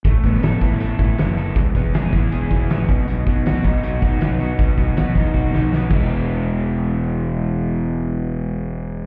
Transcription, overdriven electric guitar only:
X:1
M:4/4
L:1/8
Q:1/4=159
K:E
V:1 name="Overdriven electric guitar"
A, B, A E A E B, A | E, B, G E G E B, B,, | B,, B, F D F D B, F | B,, B, F D F D B, [E,G,B,E]- |
[E,G,B,E]8- | [E,G,B,E]8 |]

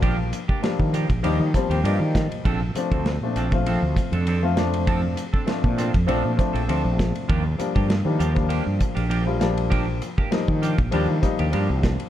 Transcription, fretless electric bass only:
X:1
M:4/4
L:1/16
Q:"Swing 16ths" 1/4=99
K:Eblyd
V:1 name="Fretless electric bass" clef=bass
B,,,3 z2 E,2 B,,, E,, E, z E,, G,, E,2 z | B,,,2 z D,,2 B,, B,,,3 D,, z F,,4- F,,- | F,,3 z2 B,,2 F,, B,,, B,, z B,,, D,, B,,,2 z | E,,2 z G,,2 E, E,,3 G,, z B,,,4- B,,,- |
B,,,3 z2 E,2 B,,, E,, E, z E,, G,, C,,2 z |]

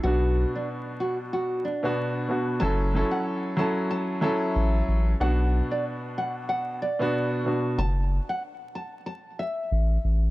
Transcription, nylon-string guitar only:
X:1
M:4/4
L:1/16
Q:"Swing 16ths" 1/4=93
K:F#m
V:1 name="Nylon-string guitar"
F3 D z2 F z F2 D3 z3 | a3 f z2 a z a2 e6 | f3 d z2 f z f2 d3 z3 | a3 f z2 a z a2 e6 |]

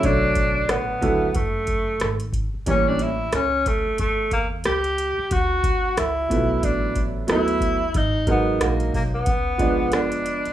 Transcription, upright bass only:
X:1
M:4/4
L:1/16
Q:"Swing 16ths" 1/4=91
K:Bm
V:1 name="Upright bass" clef=bass
B,,,4 A,,,2 C,,2 F,,,4 ^G,,,3 z | A,,,4 C,,3 z E,,4 C,,3 z | D,,4 C,,2 B,,,2 A,,,4 D,,4 | ^G,,,4 ^A,,,2 B,,,2 C,,4 ^E,,,3 z |]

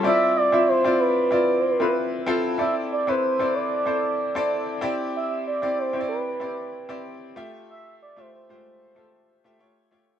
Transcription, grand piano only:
X:1
M:4/4
L:1/16
Q:"Swing 16ths" 1/4=94
K:Ddor
V:1 name="Grand piano"
[CEFd]3 [CEFe]2 [CEFd]3 [CEFd]3 [CEFB]3 [CEFA]2 | [CEAd]3 [CEAB]2 [CEAd]3 [CEAc]3 [CEAd]3 [CEGd]2- | [CEGd]3 [CEGd]2 [CEG^cd]3 [=CEGd]3 [CEGd]3 [A,FGe]2- | [A,FGe]3 [A,FGe]2 [^G,A,F=Gc]3 [A,FGA]3 [A,FGe] [A,^EG^c]2 [A,EGc]2 |]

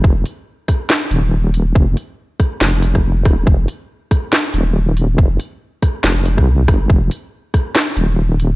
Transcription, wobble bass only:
X:1
M:4/4
L:1/16
Q:"Swing 16ths" 1/4=140
K:Ebmix
V:1 name="Wobble bass" clef=bass
F,,,2 z8 E,,,6 | F,,,2 z6 F,,,6 E,,,2 | F,,,2 z8 E,,,6 | F,,,2 z6 F,,,3 C,,3 G,,,2 |
F,,,2 z8 E,,,6 |]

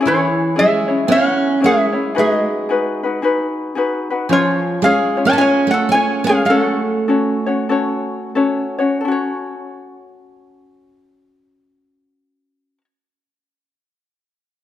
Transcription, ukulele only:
X:1
M:4/4
L:1/8
Q:"Swing" 1/4=104
K:F#m
V:1 name="Ukulele"
[CEGc]2 [CEGc] [CEc] [CEGc]2 [CEGc] [CEc] | [^DFGB]2 [DFGB] [DFB] [DFGB]2 [DFGB] [DFB] | [C^EGc]2 [CEGc] [CEc] [CEGc]2 [CEGc] [CEc] | [CFAc]2 [CFAc] [CFc] [CFAc]2 [CFAc] [CFc] |
[CFAc]8- | [CFAc]8 |]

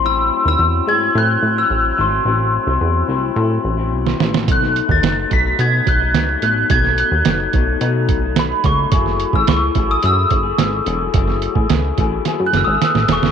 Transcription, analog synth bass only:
X:1
M:4/4
L:1/16
Q:1/4=108
K:Alyd
V:1 name="Analog synth bass" clef=bass
A,,,3 D,, E,,2 G,,2 A,,2 A,,2 A,,,2 G,,,2 | A,,,3 =C,, E,,2 C,,2 A,,2 A,,,2 B,,,2 A,,,2 | B,,,3 D,, F,,,2 B,,,2 B,,2 B,,,2 C,,2 A,,,2 | B,,,3 D,, F,,,2 B,,,2 B,,2 B,,,4 C,,2 |
F,,,3 A,,, C,,2 A,,,2 F,,2 F,,,2 G,,,2 E,,,2 | F,,,3 A,,, C,,2 A,,,2 z F,, F,,, G,,, z A,,, E,,, F,,, |]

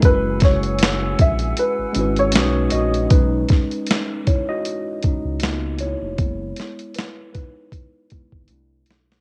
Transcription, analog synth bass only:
X:1
M:4/4
L:1/16
Q:"Swing 16ths" 1/4=78
K:B
V:1 name="Analog synth bass" clef=bass
F,,,6 A,,,2 z G,,, G,,,2 B,,,2 A,,,2 | B,,,2 z8 z C,, C,,3 ^E,,, | F,,,2 z8 z G,,, =C,,2 B,,,2 |]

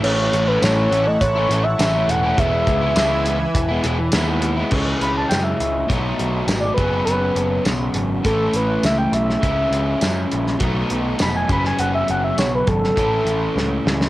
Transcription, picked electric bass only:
X:1
M:4/4
L:1/8
Q:1/4=102
K:Alyd
V:1 name="Picked electric bass" clef=bass
A,,, A,,, A,,, A,,, A,,, A,,, A,,, E,,, | E,,, C,, C,,2 E,,, E,,, D,,2 | C,, C,, F,, C,, B,,, B,,, G,,, F,,, | F,,, F,,, B,,, G,,, A,,, A,,, C,, B,,, |
C,, C,, F,, ^A,,, B,,, B,,, =F,,, ^F,,, | F,,, F,,, B,,, G,,, A,,, A,,, C,, C,, |]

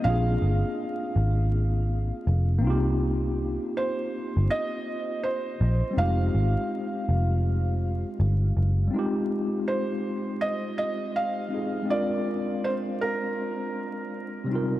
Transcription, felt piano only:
X:1
M:4/4
L:1/8
Q:"Swing 16ths" 1/4=81
K:Fdor
V:1 name="Felt piano"
f6 z2 | z2 c2 e2 c2 | f6 z2 | z2 c2 e e f2 |
d2 c B4 z |]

